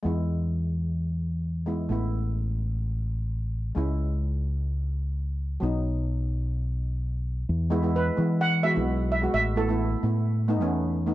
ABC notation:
X:1
M:4/4
L:1/16
Q:1/4=129
K:E
V:1 name="Steel pan"
z16 | z16 | z16 | z16 |
z4 B4 f2 e4 e2 | e2 A12 z2 |]
V:2 name="Steel pan"
[G,B,E]12- [G,B,E]2 [G,B,E]2 | [A,B,E]16 | [G,CE]16 | [F,B,D]16 |
z2 [G,B,E] [G,B,E]2 z [G,B,E]2 z2 [G,B,F] [G,B,E]2 z2 [G,B,F] | z2 [A,B,E] [A,B,E]2 z [A,B,E]2 z2 [A,B,D] [A,B,C]2 z2 [A,B,D] |]
V:3 name="Fingered electric bass" clef=bass
E,,16 | A,,,16 | C,,16 | B,,,16 |
E,,6 E,4- E, B,,,4- B,,, | A,,,6 A,,4- A,, E,,4- E,, |]